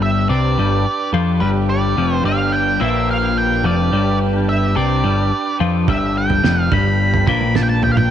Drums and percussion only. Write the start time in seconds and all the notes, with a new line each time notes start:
5.88 kick, floor tom
6.30 floor tom, low conga
6.44 snare
6.72 kick, floor tom, high conga, low conga
7.14 floor tom
7.28 kick
7.41 high conga
7.55 snare, mid tom
7.69 high conga
7.83 floor tom, low conga
7.97 mid tom